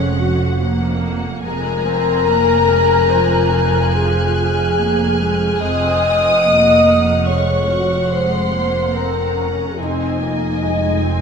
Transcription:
Already playing: F1 F2 G#3 C#4 C#5 F#5
0.19 F#4
0.60 A#3
1.44 F1 F2 G#3 A#4 G#5 A#5 F6 F#6
1.87 C4
2.28 A#3
2.71 G#3
3.10 F3 C5
3.94 G#4 G#5
4.78 A#3
5.20 G#3
5.61 F1 F2 C4 D#5 D#6
6.44 A#3 F#5
7.27 G#3 C#5 C#6
7.69 F#4
8.12 G#3 C5 C6
8.54 A#3
8.95 C4 A#4 A#5
9.37 C#4
9.77 F1 F2 C4 D#4 D#5 G#5
10.20 A#3
10.62 G#3 D#4 D#5
11.02 C4

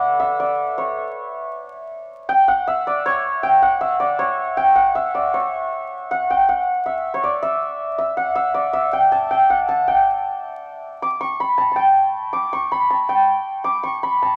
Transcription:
Already playing: A4 B4 D5 E5 F#5
0.20 E5
0.40 D5
0.78 C#5
2.29 G5
2.48 F#5
2.67 E5
2.87 D5
3.06 C#5
3.43 G5
3.62 F#5
3.81 E5
4.00 D5
4.19 C#5
4.57 G5
4.76 F#5
4.95 E5
5.15 D5
5.34 C#5
6.11 F#5
6.30 G5
6.49 F#5
6.86 E5
7.14 C#5
7.24 D5
7.43 E5
7.98 E5
8.17 F#5
8.35 E5
8.54 D5
8.73 E5
8.93 G5
9.12 A5
9.31 G5
9.50 F#5
9.69 A5
9.88 G5
11.02 D6
11.21 C#6
11.40 B5
11.58 A5
11.72 A5
11.76 G5
12.33 D6
12.53 C#6
12.72 B5
12.90 A5
13.09 G5
13.64 D6
13.83 C#6
14.03 B5
14.22 A5

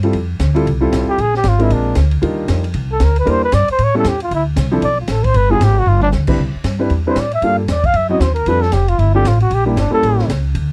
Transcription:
Already playing: G2
0.03 G3 C4 E4 F4 A4, ride
0.13 F2, kick, ride
0.39 D2, kick, snare, hi-hat pedal, ride
0.54 G3 C4 E4 F4 A4, ride
0.66 C2, kick, ride
0.81 G3 C4 E4 F4 A4
0.92 B1, kick, snare, hi-hat pedal, ride
1.09 G4, muted upright bass stroke
1.18 A#1 G#4, kick, ride
1.35 G4, snare
1.44 G#1, kick, snare, hi-hat pedal, ride
1.49 F4
1.59 G#3 C4 D4 E4 F4 A#4, ride
1.70 A#1 D4, kick, ride
1.95 D2, kick, snare, hi-hat pedal, ride
2.11 ride
2.22 D#2 G3 D4 D#4 F4 A#4, kick, ride
2.48 F2, kick, snare, hi-hat pedal, ride
2.64 ride
2.74 C2, kick, ride
2.92 A4
3.00 D2, kick, snare, hi-hat pedal, ride
3.04 A#4
3.16 B4, ride
3.25 E2 G3 A#3 D4 E4 A#4, kick, ride
3.30 C5
3.44 B4
3.52 G2 D5, kick, snare, hi-hat pedal, ride
3.68 C5, muted upright bass stroke, ride
3.79 A2, kick, ride
3.84 C#5
3.94 G3 B3 C#4 E4 A4
4.04 E2 G4, kick, snare, hi-hat pedal, ride
4.20 F4, ride
4.31 D2 E4, kick, ride
4.56 C2, kick, snare, hi-hat pedal, ride
4.71 F3 C4 D4 E4 A4
4.82 B1 D5, kick, ride
5.01 F4
5.08 A1 A4, kick, snare, hi-hat pedal, ride
5.24 C5, kick, ride
5.34 G1 B4, kick, ride
5.49 G3 B3 D4 F4 G#4
5.61 G#1 G4, kick, snare, hi-hat pedal, ride
5.79 F#4
5.86 G1 F4, floor tom
6.02 D4, floor tom
6.12 D2, snare, hi-hat pedal
6.27 G3 C4 D4 E4 B4, kick, crash
6.38 C2, kick
6.55 muted upright bass stroke
6.64 G2, kick, snare, hi-hat pedal, ride
6.79 G3 C4 D4 E4 B4
6.90 E2, kick, ride
7.07 G3 C4 D4 E4 B4 C5
7.16 A2 D5, kick, snare, hi-hat pedal, ride
7.31 E5, ride
7.42 G2 G3 A#3 D4 F4 A4 F5, kick, ride
7.59 A4
7.68 E2 D5, kick, snare, hi-hat pedal, ride
7.84 F5, kick, ride
7.94 F#2 E5, kick, ride
8.09 F#3 C4 C#4 E4 F#4 D#5
8.20 D#2 C5, kick, snare, hi-hat pedal, ride
8.34 A#4, ride
8.46 F2 G3 C4 D4 F4 A4 B4, kick, ride
8.62 A4, snare
8.72 F1 G4, kick, snare, hi-hat pedal, ride
8.88 F4, ride
8.99 G1 E4, kick, ride
9.14 G3 C4 D4 F4 G4 A4
9.24 A1 F4, kick, snare, hi-hat pedal, ride
9.40 F#4, ride
9.50 A#1 G4, kick, ride
9.66 G3 A#3 D4 E4 G4
9.76 G1 D4, kick, snare, hi-hat pedal, ride
9.90 G3 A#3 C#4 E4 A4, muted upright bass stroke
10.03 A1, kick, ride
10.19 snare
10.28 C#2, kick, snare, hi-hat pedal, ride
10.55 D2, kick, ride

